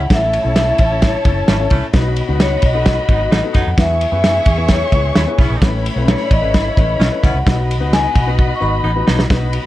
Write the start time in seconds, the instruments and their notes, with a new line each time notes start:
Already playing: vibraphone F#5
0.10 fingered electric bass A1, upright piano A2 C#4 E4 A4 C#5, violin section E4 C#5 A5, vibraphone E5, kick, snare, ride
0.33 ride
0.44 fingered electric bass B1, upright piano C#4 E4 A4 C#5
0.56 snare, ride
0.78 fingered electric bass A1, kick, ride
0.90 upright piano C#4 E4 A4 C#5
1.02 vibraphone C#5, kick, snare, ride
1.24 fingered electric bass F#1, saxophone section A3 C#4 E4, upright piano C#4 E4 A4 C#5, kick, ride
1.48 fingered electric bass G#1, saxophone section A3 C#4 E4, snare, ride
1.59 upright piano C#4 E4 A4 C#5
1.70 fingered electric bass C2, saxophone section A3 C#4 E4, kick, ride
1.93 fingered electric bass B1, upright piano B2 B3 D#4 F#4 B4, violin section F#4 D#5 B5, kick, snare, ride
2.16 ride
2.28 fingered electric bass C#2, upright piano B3 D#4 F#4 B4
2.40 vibraphone C#5, snare, ride
2.62 fingered electric bass B1, vibraphone D#5, kick, ride
2.74 upright piano B3 D#4 F#4 A4
2.86 kick, snare, ride
3.08 fingered electric bass G#1, saxophone section F#3 B3 D#4, upright piano B3 D#4 F#4 B4, kick, ride
3.31 fingered electric bass A1, saxophone section F#3 B3 D#4, snare, ride
3.44 upright piano B3 D#4 F#4 A4
3.54 fingered electric bass F#2, saxophone section F#3 B3 D#4, vibraphone F#5, kick, snare, ride
3.67 fingered electric bass F2
3.78 fingered electric bass E2, upright piano E3 B3 E4 G#4 B4, violin section G#4 E5 C#6, vibraphone E5, kick, snare, ride
4.01 ride
4.12 fingered electric bass F#2, upright piano B3 E4 G#4 B4
4.24 snare, ride
4.46 fingered electric bass E2, kick, ride
4.57 upright piano B3 E4 G#4 B4
4.68 vibraphone C#5, kick, snare, ride
4.92 fingered electric bass C#2, saxophone section G#3 B3 E4, upright piano B3 E4 G#4 C#5, kick, ride
5.15 fingered electric bass D#2, saxophone section G#3 B3 E4, snare, ride
5.27 upright piano B3 E4 G#4 B4
5.38 fingered electric bass B1, saxophone section B3 C#4 E4, kick, snare, ride
5.50 fingered electric bass A#1
5.61 fingered electric bass A1, upright piano A2 C#4 E4 A4 B4, violin section E4 C#5 B5, kick, snare, ride
5.86 ride
5.96 fingered electric bass B1, upright piano C4 E4 A4 B4
6.02 upright piano C#4
6.08 vibraphone C#5, snare, ride
6.26 vibraphone D5
6.31 fingered electric bass A1, vibraphone D#5, kick, ride
6.42 fingered electric bass G#1, upright piano C#4 E4 A4 B4
6.54 kick, snare, ride
6.76 fingered electric bass A1, saxophone section E3 A3 C#4, upright piano C#4 E4 A4 B4, kick, ride
6.99 fingered electric bass B1, saxophone section E3 A3 C#4, snare, ride
7.11 upright piano C#4 E4 A4 B4
7.23 fingered electric bass C#2, saxophone section B3 C#4 E4, vibraphone F#5, kick, snare, ride
7.34 fingered electric bass C2
7.45 fingered electric bass B1, upright piano B2 B3 D#4 F#4 B4, violin section F#4 D#5 B5, kick, snare, ride
7.71 ride
7.80 fingered electric bass C#2, upright piano B3 D#4 F#4 B4
7.93 vibraphone G#5, snare, ride
8.09 vibraphone G#5
8.15 fingered electric bass B1, vibraphone F#5, kick, ride
8.27 upright piano B3 D#4 F#4 B4
8.39 kick
8.56 vibraphone C#6
8.60 fingered electric bass G#1, saxophone section F#3 B3 D#4, upright piano B3 D#4 F#4 B4, vibraphone B5
8.83 fingered electric bass A1, saxophone section F#3 B3 D#4
8.96 upright piano B3 D#4 F#4 B4
9.07 fingered electric bass B1, saxophone section F#3 B3 D#4, snare
9.19 snare
9.30 fingered electric bass B1, upright piano B2 B3 D#4 F#4 B4, violin section F#4 D#5 B5, kick, snare, ride
9.53 ride